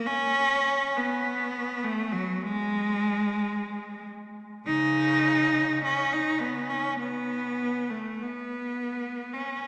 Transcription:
\new Staff \with { instrumentName = "Cello" } { \time 4/4 \key b \mixolydian \tempo 4 = 51 cis'8. b8. a16 fis16 gis4. r8 | <cis dis'>4 cis'16 dis'16 b16 cis'16 b8. a16 b8. cis'16 | }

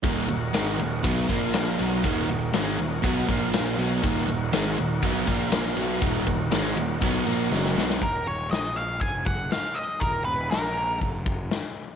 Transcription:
<<
  \new Staff \with { instrumentName = "Lead electric guitar" } { \time 4/4 \key ees \minor \tempo 4 = 120 r1 | r1 | r1 | r1 |
bes'8 des''8 ees''8 f''8 aes''8 ges''8 f''8 ees''8 | bes'8 ces''8 bes'4 r2 | }
  \new Staff \with { instrumentName = "Tonewheel organ" } { \time 4/4 \key ees \minor <ees' ges' bes' ges''>2~ <ees' ges' bes' ges''>8 <f' bes' f''>4 <ees' ges' bes' ges''>8~ | <ees' ges' bes' ges''>2~ <ees' ges' bes' ges''>8 <f' bes' f''>4 <ees' ges' bes' ges''>8~ | <ees' ges' bes' ges''>2~ <ees' ges' bes' ges''>8 <f' bes' f''>4 <ees' ges' bes' ges''>8~ | <ees' ges' bes' ges''>1 |
r1 | r1 | }
  \new Staff \with { instrumentName = "Distorted electric guitar" } { \clef bass \time 4/4 \key ees \minor <ees, bes, ees>8 <ees, bes,>8 <aes, ees aes>8 <ees, bes,>8 <ces ges ces'>8 <bes, f bes>4 <ces ges ces'>8 | <ees, bes, ees>8 <ees, bes,>8 <aes, ees aes>8 <ees, bes,>8 <ces ges ces'>8 <bes, f bes>4 <ces ges ces'>8 | <ees, bes, ees>8 <ees, bes,>8 <aes, ees aes>8 <ees, bes,>8 <ces ges ces'>8 <bes, f bes>4 <ces ges ces'>8 | <ees, bes, ees>8 <ees, bes,>8 <aes, ees aes>8 <ees, bes,>8 <ces ges ces'>8 <bes, f bes>8 <ges, des ges>8 <ces ges ces'>8 |
r1 | r1 | }
  \new Staff \with { instrumentName = "Overdriven electric guitar" } { \clef bass \time 4/4 \key ees \minor <ees, bes, ees>8 <ees, bes,>8 <aes, ees aes>8 <ees, bes,>8 <ces ges ces'>8 <bes, f bes>4 <ces ges ces'>8 | <ees, bes, ees>8 <ees, bes,>8 <aes, ees aes>8 <ees, bes,>8 <ces ges ces'>8 <bes, f bes>4 <ces ges ces'>8 | <ees, bes, ees>8 <ees, bes,>8 <aes, ees aes>8 <ees, bes,>8 <ces ges ces'>8 <bes, f bes>4 <ces ges ces'>8 | <ees, bes, ees>8 <ees, bes,>8 <aes, ees aes>8 <ees, bes,>8 <ces ges ces'>8 <bes, f bes>8 <ges, des ges>8 <ces ges ces'>8 |
r1 | r1 | }
  \new Staff \with { instrumentName = "Picked electric bass" } { \clef bass \time 4/4 \key ees \minor ees,,8 ees,,8 aes,,8 ees,,8 ces,8 bes,,4 ces,8 | ees,,8 ees,,8 aes,,8 ees,,8 ces,8 bes,,4 ces,8 | ees,,8 ees,,8 aes,,8 ees,,8 ces,8 bes,,4 ces,8 | ees,,8 ees,,8 aes,,8 ees,,8 ces,8 bes,,8 ges,,8 ces,8 |
ees,,8 ees,,8 bes,,4 f,,8 ges,,8 r4 | ees,,8 ees,,8 bes,,4 f,,8 ges,,8 r4 | }
  \new DrumStaff \with { instrumentName = "Drums" } \drummode { \time 4/4 <bd cymr>8 cymr8 <cymr sn>8 cymr8 <bd cymr>8 <bd cymr>8 <cymr sn>8 cymr8 | <bd cymr>8 cymr8 <cymr sn>8 cymr8 <bd cymr>8 <bd cymr>8 <cymr sn>8 cymr8 | <bd cymr>8 cymr8 <cymr sn>8 cymr8 <bd cymr>8 <bd cymr>8 <cymr sn>8 cymr8 | <bd cymr>8 <bd cymr>8 <cymr sn>8 cymr8 <bd cymr>8 cymr8 sn16 sn16 sn16 sn16 |
<hho bd>4 <hho sn>4 <hho bd>8 bd8 <hho sn>4 | <hho bd>4 <hho sn>4 <hho bd>8 bd8 <hho sn>4 | }
>>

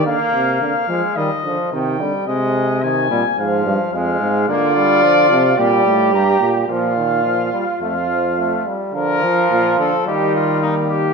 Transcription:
<<
  \new Staff \with { instrumentName = "Trumpet" } { \time 4/4 \key bes \mixolydian \tempo 4 = 108 f''4 f''4 ees''4 g''4 | ees''4 aes''4 f''4 f''4 | \key bes \major d''2 d''4 bes''8 r8 | f''2 f''4. r8 |
bes'4. a'8 g'8 f'8 ees'8 g'8 | }
  \new Staff \with { instrumentName = "Flugelhorn" } { \time 4/4 \key bes \mixolydian r1 | r1 | \key bes \major f'2 g'2 | f'2 f'4. r8 |
f'2 ees'4 bes4 | }
  \new Staff \with { instrumentName = "Trombone" } { \clef bass \time 4/4 \key bes \mixolydian bes4. aes8 g8 f8 ees8 g8 | aes4 ees8 g8 f4 aes4 | \key bes \major bes8 g8 f8 f8 g4. r8 | f8 ees8 f8 g8 a8 f8 a8 g8 |
f2 g2 | }
  \new Staff \with { instrumentName = "Euphonium" } { \clef bass \time 4/4 \key bes \mixolydian d8 c8 d8 f8 ees8 d8 c8 d8 | c4. bes,8 aes,8 g,8 f,8 aes,8 | \key bes \major d4. c8 bes,8 a,8 g,8 bes,8 | bes,4. r8 f,4. r8 |
d8 f8 bes,8 d8 ees2 | }
>>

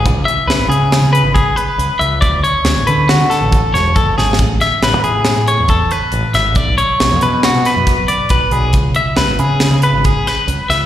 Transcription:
<<
  \new Staff \with { instrumentName = "Clean electric guitar" } { \time 5/4 \key cis \phrygian \tempo 4 = 138 r8 e''8 b'8 gis'4 b'8 gis'8 b'4 e''8 | d''8 cis''4 b'8 fis'8 a'4 cis''8 a'8 gis'8 | r8 e''8 b'8 gis'4 cis''8 a'8 b'4 e''8 | d''8 cis''4 b'8 fis'8 b'4 d''8 b'8 gis'8 |
r8 e''8 b'8 gis'4 b'8 gis'8 b'4 e''8 | }
  \new Staff \with { instrumentName = "Picked electric bass" } { \clef bass \time 5/4 \key cis \phrygian cis,8 r8 cis,16 gis,,16 cis8. cis8 gis,,8 r8. cis,16 r16 cis,8 | d,8 r8 d,16 a,,16 d8. d8 a,,8 r16 e,,8 fis,,8 gis,,8 | a,,8 r8 a,,16 e,16 a,8. a,8 e,8 r8. a,,16 r16 gis,,8 | b,,8 r8 b,,16 fis,16 b,8. b,8 fis,8 r8. b,,16 r16 b,,8 |
cis,8 r8 cis,16 gis,,16 cis8. cis8 gis,,8 r8. cis,16 r16 cis,8 | }
  \new DrumStaff \with { instrumentName = "Drums" } \drummode { \time 5/4 <hh bd>8 hh8 <hh sn>8 hh8 <hh sn>8 hh8 <hh bd>8 hh8 hh8 hh8 | <hh bd>8 hh8 <hh sn>8 hh8 <hh sn>8 <hh sn>8 <hh bd>8 <hh sn>8 \tuplet 3/2 { <hh bd>16 r16 r16 sn16 r16 sn16 } | <hh bd>8 <hh sn>8 <hh sn>8 hh8 <hh sn>8 hh8 <hh bd>8 hh8 hh8 <hh sn>8 | <hh bd>8 hh8 <hh sn>8 hh8 <hh sn>8 <hh sn>8 <hh bd sn>8 hh8 <hh bd>8 hh8 |
<hh bd>8 hh8 <hh sn>8 hh8 <hh sn>8 hh8 <hh bd>8 <hh sn>8 hh8 <hh sn>8 | }
>>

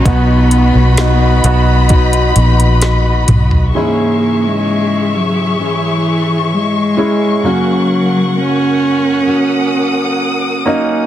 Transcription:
<<
  \new Staff \with { instrumentName = "String section" } { \time 4/4 \key cis \dorian \tempo 4 = 65 << { b''1 | cis'''1~ | cis'''2 dis'''2 | } \\ { <fis' dis''>1 | <gis' e''>1 | <ais' fis''>1 | } >> }
  \new Staff \with { instrumentName = "Grand piano" } { \time 4/4 \key cis \dorian <b dis' fis'>4 <b dis' fis'>8 <b dis' fis'>2 r8 | <gis cis' e'>2 r4. <gis cis' e'>8 | <ais cis' fis'>2 r4. <ais cis' dis'>8 | }
  \new Staff \with { instrumentName = "Grand piano" } { \clef bass \time 4/4 \key cis \dorian <b, fis>4. r2 r8 | gis,4. r2 r8 | cis4. r2 r8 | }
  \new Staff \with { instrumentName = "Steel-string acoustic guitar" } { \time 4/4 \key cis \dorian <b, fis b dis' fis'>2 <fis b dis' fis'>8 <b dis' fis'>4. | <cis e cis' e' gis'>2 <e cis' e' gis'>4. <cis' e' gis'>8 | <fis, cis fis ais cis' fis'>2 <fis ais cis' fis'>4. <fis ais cis' fis'>8 | }
  \new Staff \with { instrumentName = "Cello" } { \clef bass \time 4/4 \key cis \dorian b4. r2 r8 | ais8. gis8. fis8 e4 gis4 | fis4 cis'2~ cis'8 r8 | }
  \new Staff \with { instrumentName = "Fingered electric bass" } { \clef bass \time 4/4 \key cis \dorian b,,8. b,,8. b,,4 ais,,4 b,,8 | r1 | r1 | }
  \new DrumStaff \with { instrumentName = "Drums" } \drummode { \time 4/4 <hh bd>8 hh8 <hh sn>8 hh8 <hh bd>16 hh16 hh16 hh16 <hh sn>8 <hh toml>16 tomfh16 | r4 r4 r4 r4 | r4 r4 r4 r4 | }
>>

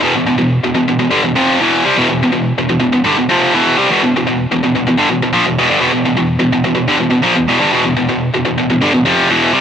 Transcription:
\new Staff \with { instrumentName = "Distorted electric guitar" } { \clef bass \time 4/4 \key c \lydian \tempo 4 = 125 <e, b,>16 <e, b,>16 <e, b,>16 <e, b,>8 <e, b,>16 <e, b,>16 <e, b,>16 <e, b,>16 <g, d>16 <e, b,>16 <f, c f>8 <e, b, e>8 <c g>16 | <e, b,>16 <e, b,>16 <e, b,>16 <e, b,>8 <e, b,>16 <e, b,>16 <e, b,>16 <e, b,>16 <g, d>16 <e, b,>16 <f, c f>8 <e, b, e>8 <c g>16 | <e, b,>16 <e, b,>16 <e, b,>16 <e, b,>8 <e, b,>16 <e, b,>16 <e, b,>16 <e, b,>16 <g, d>16 <e, b,>16 <e, b,>16 <ais, f>16 <e, b,>16 <e, b,>16 <g, d>16 | <e, b,>16 <e, b,>16 <e, b,>16 <e, b,>8 <e, b,>16 <e, b,>16 <e, b,>16 <e, b,>16 <g, d>16 <e, b,>16 <e, b,>16 <ais, f>16 <e, b,>16 <e, b,>16 <g, d>16 |
<e, b,>16 <e, b,>16 <e, b,>16 <e, b,>8 <e, b,>16 <e, b,>16 <e, b,>16 <e, b,>16 <g, d>16 <e, b,>16 <f, c f>8 <e, b, e>8 <c g>16 | }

